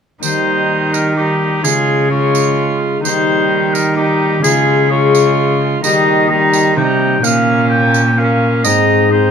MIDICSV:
0, 0, Header, 1, 7, 480
1, 0, Start_track
1, 0, Tempo, 468019
1, 233, Time_signature, 3, 2, 24, 8
1, 9547, End_track
2, 0, Start_track
2, 0, Title_t, "Oboe"
2, 0, Program_c, 0, 68
2, 239, Note_on_c, 0, 72, 111
2, 963, Note_on_c, 0, 70, 83
2, 978, Note_off_c, 0, 72, 0
2, 1192, Note_off_c, 0, 70, 0
2, 1199, Note_on_c, 0, 67, 81
2, 1668, Note_off_c, 0, 67, 0
2, 1677, Note_on_c, 0, 68, 95
2, 2152, Note_off_c, 0, 68, 0
2, 2162, Note_on_c, 0, 73, 91
2, 2865, Note_off_c, 0, 73, 0
2, 3116, Note_on_c, 0, 72, 104
2, 3831, Note_on_c, 0, 70, 83
2, 3846, Note_off_c, 0, 72, 0
2, 4060, Note_off_c, 0, 70, 0
2, 4066, Note_on_c, 0, 67, 88
2, 4535, Note_off_c, 0, 67, 0
2, 4541, Note_on_c, 0, 68, 103
2, 5020, Note_off_c, 0, 68, 0
2, 5036, Note_on_c, 0, 73, 100
2, 5738, Note_off_c, 0, 73, 0
2, 5979, Note_on_c, 0, 75, 114
2, 6427, Note_off_c, 0, 75, 0
2, 6459, Note_on_c, 0, 82, 110
2, 6931, Note_off_c, 0, 82, 0
2, 6941, Note_on_c, 0, 79, 101
2, 7422, Note_on_c, 0, 77, 119
2, 7437, Note_off_c, 0, 79, 0
2, 7888, Note_off_c, 0, 77, 0
2, 7894, Note_on_c, 0, 79, 106
2, 8387, Note_on_c, 0, 77, 93
2, 8402, Note_off_c, 0, 79, 0
2, 8855, Note_off_c, 0, 77, 0
2, 8861, Note_on_c, 0, 75, 112
2, 9335, Note_off_c, 0, 75, 0
2, 9349, Note_on_c, 0, 72, 91
2, 9547, Note_off_c, 0, 72, 0
2, 9547, End_track
3, 0, Start_track
3, 0, Title_t, "Harp"
3, 0, Program_c, 1, 46
3, 197, Note_on_c, 1, 58, 47
3, 209, Note_on_c, 1, 63, 48
3, 220, Note_on_c, 1, 67, 47
3, 233, Note_on_c, 1, 51, 53
3, 1159, Note_off_c, 1, 58, 0
3, 1170, Note_off_c, 1, 63, 0
3, 1171, Note_on_c, 1, 58, 45
3, 1182, Note_off_c, 1, 67, 0
3, 1182, Note_on_c, 1, 63, 50
3, 1648, Note_on_c, 1, 61, 49
3, 1661, Note_on_c, 1, 65, 49
3, 1676, Note_on_c, 1, 68, 51
3, 1683, Note_off_c, 1, 58, 0
3, 1689, Note_off_c, 1, 63, 0
3, 1691, Note_on_c, 1, 49, 53
3, 1697, Note_off_c, 1, 51, 0
3, 2111, Note_off_c, 1, 61, 0
3, 2124, Note_on_c, 1, 61, 50
3, 2125, Note_off_c, 1, 65, 0
3, 2137, Note_on_c, 1, 65, 49
3, 2140, Note_off_c, 1, 68, 0
3, 2153, Note_on_c, 1, 68, 44
3, 3076, Note_on_c, 1, 58, 53
3, 3090, Note_on_c, 1, 63, 48
3, 3104, Note_on_c, 1, 67, 51
3, 3113, Note_on_c, 1, 51, 60
3, 3118, Note_off_c, 1, 61, 0
3, 3125, Note_off_c, 1, 65, 0
3, 3133, Note_off_c, 1, 68, 0
3, 3144, Note_off_c, 1, 49, 0
3, 4027, Note_off_c, 1, 58, 0
3, 4037, Note_off_c, 1, 63, 0
3, 4039, Note_on_c, 1, 58, 50
3, 4050, Note_off_c, 1, 67, 0
3, 4063, Note_on_c, 1, 67, 51
3, 4521, Note_on_c, 1, 61, 56
3, 4528, Note_on_c, 1, 65, 56
3, 4546, Note_on_c, 1, 68, 56
3, 4554, Note_off_c, 1, 58, 0
3, 4555, Note_on_c, 1, 49, 56
3, 4566, Note_off_c, 1, 67, 0
3, 4569, Note_off_c, 1, 51, 0
3, 4982, Note_off_c, 1, 61, 0
3, 4995, Note_on_c, 1, 61, 52
3, 4998, Note_off_c, 1, 65, 0
3, 5009, Note_off_c, 1, 68, 0
3, 5010, Note_on_c, 1, 65, 53
3, 5021, Note_on_c, 1, 68, 52
3, 5946, Note_on_c, 1, 58, 53
3, 5961, Note_on_c, 1, 63, 55
3, 5976, Note_on_c, 1, 67, 53
3, 5987, Note_on_c, 1, 51, 61
3, 5988, Note_off_c, 1, 61, 0
3, 5996, Note_off_c, 1, 65, 0
3, 6001, Note_off_c, 1, 68, 0
3, 6010, Note_off_c, 1, 49, 0
3, 6410, Note_off_c, 1, 58, 0
3, 6422, Note_off_c, 1, 63, 0
3, 6423, Note_on_c, 1, 58, 56
3, 6433, Note_off_c, 1, 67, 0
3, 6434, Note_on_c, 1, 63, 58
3, 6446, Note_on_c, 1, 67, 57
3, 6890, Note_off_c, 1, 58, 0
3, 6902, Note_on_c, 1, 58, 56
3, 6904, Note_off_c, 1, 63, 0
3, 6915, Note_off_c, 1, 67, 0
3, 6916, Note_on_c, 1, 63, 55
3, 6927, Note_on_c, 1, 67, 58
3, 6938, Note_on_c, 1, 48, 63
3, 7376, Note_off_c, 1, 58, 0
3, 7388, Note_on_c, 1, 58, 61
3, 7400, Note_on_c, 1, 61, 60
3, 7409, Note_on_c, 1, 65, 60
3, 7427, Note_on_c, 1, 46, 61
3, 7428, Note_off_c, 1, 63, 0
3, 7433, Note_off_c, 1, 67, 0
3, 7439, Note_off_c, 1, 48, 0
3, 7440, Note_off_c, 1, 51, 0
3, 8338, Note_off_c, 1, 58, 0
3, 8350, Note_off_c, 1, 61, 0
3, 8350, Note_on_c, 1, 58, 53
3, 8362, Note_on_c, 1, 61, 55
3, 8366, Note_off_c, 1, 65, 0
3, 8379, Note_on_c, 1, 65, 54
3, 8839, Note_on_c, 1, 60, 52
3, 8848, Note_on_c, 1, 63, 58
3, 8865, Note_on_c, 1, 68, 57
3, 8868, Note_off_c, 1, 58, 0
3, 8874, Note_off_c, 1, 61, 0
3, 8879, Note_on_c, 1, 44, 64
3, 8882, Note_off_c, 1, 65, 0
3, 8887, Note_off_c, 1, 46, 0
3, 9309, Note_off_c, 1, 60, 0
3, 9322, Note_on_c, 1, 60, 52
3, 9326, Note_off_c, 1, 63, 0
3, 9336, Note_off_c, 1, 68, 0
3, 9339, Note_on_c, 1, 63, 50
3, 9348, Note_on_c, 1, 68, 49
3, 9547, Note_off_c, 1, 44, 0
3, 9547, Note_off_c, 1, 60, 0
3, 9547, Note_off_c, 1, 63, 0
3, 9547, Note_off_c, 1, 68, 0
3, 9547, End_track
4, 0, Start_track
4, 0, Title_t, "Viola"
4, 0, Program_c, 2, 41
4, 232, Note_on_c, 2, 63, 62
4, 1155, Note_off_c, 2, 63, 0
4, 1192, Note_on_c, 2, 63, 57
4, 1680, Note_on_c, 2, 65, 64
4, 1696, Note_off_c, 2, 63, 0
4, 2154, Note_off_c, 2, 65, 0
4, 2160, Note_on_c, 2, 65, 62
4, 3099, Note_off_c, 2, 65, 0
4, 3113, Note_on_c, 2, 63, 66
4, 4051, Note_off_c, 2, 63, 0
4, 4079, Note_on_c, 2, 63, 69
4, 4545, Note_off_c, 2, 63, 0
4, 4552, Note_on_c, 2, 65, 67
4, 5021, Note_off_c, 2, 65, 0
4, 5027, Note_on_c, 2, 65, 73
4, 5966, Note_off_c, 2, 65, 0
4, 5990, Note_on_c, 2, 63, 73
4, 6433, Note_off_c, 2, 63, 0
4, 6471, Note_on_c, 2, 63, 70
4, 6934, Note_off_c, 2, 63, 0
4, 6940, Note_on_c, 2, 63, 68
4, 7411, Note_off_c, 2, 63, 0
4, 7418, Note_on_c, 2, 61, 80
4, 8362, Note_off_c, 2, 61, 0
4, 8379, Note_on_c, 2, 61, 70
4, 8866, Note_on_c, 2, 63, 69
4, 8881, Note_off_c, 2, 61, 0
4, 9347, Note_off_c, 2, 63, 0
4, 9353, Note_on_c, 2, 63, 72
4, 9547, Note_off_c, 2, 63, 0
4, 9547, End_track
5, 0, Start_track
5, 0, Title_t, "Trombone"
5, 0, Program_c, 3, 57
5, 236, Note_on_c, 3, 55, 64
5, 1157, Note_off_c, 3, 55, 0
5, 1201, Note_on_c, 3, 55, 62
5, 1669, Note_off_c, 3, 55, 0
5, 1681, Note_on_c, 3, 56, 62
5, 2153, Note_off_c, 3, 56, 0
5, 2170, Note_on_c, 3, 56, 74
5, 3103, Note_off_c, 3, 56, 0
5, 3127, Note_on_c, 3, 55, 71
5, 4059, Note_off_c, 3, 55, 0
5, 4074, Note_on_c, 3, 55, 69
5, 4548, Note_on_c, 3, 56, 72
5, 4563, Note_off_c, 3, 55, 0
5, 5028, Note_off_c, 3, 56, 0
5, 5034, Note_on_c, 3, 56, 80
5, 5970, Note_off_c, 3, 56, 0
5, 5988, Note_on_c, 3, 55, 80
5, 6432, Note_off_c, 3, 55, 0
5, 6469, Note_on_c, 3, 55, 78
5, 6936, Note_off_c, 3, 55, 0
5, 6949, Note_on_c, 3, 55, 74
5, 7415, Note_off_c, 3, 55, 0
5, 7424, Note_on_c, 3, 58, 77
5, 8217, Note_off_c, 3, 58, 0
5, 8391, Note_on_c, 3, 58, 70
5, 8869, Note_on_c, 3, 60, 69
5, 8885, Note_off_c, 3, 58, 0
5, 9349, Note_off_c, 3, 60, 0
5, 9357, Note_on_c, 3, 60, 80
5, 9547, Note_off_c, 3, 60, 0
5, 9547, End_track
6, 0, Start_track
6, 0, Title_t, "Cello"
6, 0, Program_c, 4, 42
6, 235, Note_on_c, 4, 51, 61
6, 1677, Note_on_c, 4, 49, 64
6, 1693, Note_off_c, 4, 51, 0
6, 3113, Note_off_c, 4, 49, 0
6, 3119, Note_on_c, 4, 51, 69
6, 4524, Note_off_c, 4, 51, 0
6, 4554, Note_on_c, 4, 49, 74
6, 5962, Note_off_c, 4, 49, 0
6, 5989, Note_on_c, 4, 51, 75
6, 6945, Note_on_c, 4, 48, 72
6, 6960, Note_off_c, 4, 51, 0
6, 7409, Note_off_c, 4, 48, 0
6, 7415, Note_on_c, 4, 46, 79
6, 8872, Note_on_c, 4, 44, 67
6, 8887, Note_off_c, 4, 46, 0
6, 9547, Note_off_c, 4, 44, 0
6, 9547, End_track
7, 0, Start_track
7, 0, Title_t, "Drums"
7, 232, Note_on_c, 9, 54, 75
7, 335, Note_off_c, 9, 54, 0
7, 965, Note_on_c, 9, 54, 48
7, 1067, Note_off_c, 9, 54, 0
7, 1687, Note_on_c, 9, 54, 79
7, 1789, Note_off_c, 9, 54, 0
7, 2408, Note_on_c, 9, 54, 53
7, 2511, Note_off_c, 9, 54, 0
7, 3128, Note_on_c, 9, 54, 76
7, 3231, Note_off_c, 9, 54, 0
7, 3845, Note_on_c, 9, 54, 49
7, 3948, Note_off_c, 9, 54, 0
7, 4556, Note_on_c, 9, 54, 77
7, 4659, Note_off_c, 9, 54, 0
7, 5279, Note_on_c, 9, 54, 50
7, 5381, Note_off_c, 9, 54, 0
7, 5988, Note_on_c, 9, 54, 76
7, 6091, Note_off_c, 9, 54, 0
7, 6702, Note_on_c, 9, 54, 51
7, 6805, Note_off_c, 9, 54, 0
7, 7426, Note_on_c, 9, 54, 74
7, 7528, Note_off_c, 9, 54, 0
7, 8147, Note_on_c, 9, 54, 48
7, 8249, Note_off_c, 9, 54, 0
7, 8867, Note_on_c, 9, 54, 80
7, 8969, Note_off_c, 9, 54, 0
7, 9547, End_track
0, 0, End_of_file